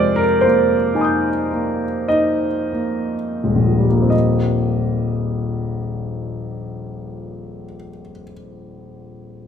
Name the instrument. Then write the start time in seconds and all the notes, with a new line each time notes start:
grand piano
Already playing: F2 C3 G#3 A#4 C5 D5
0.16 A#4
0.41 A#3 C5
0.94 D#4 G#5 A#5
1.01 D#6 G6
1.51 A#3
2.08 D#4 D#5
2.72 A#3
3.44 D#1 G#3
3.55 A#1
3.67 F3
3.78 G3
3.90 A#3
4.02 C4
4.10 D#5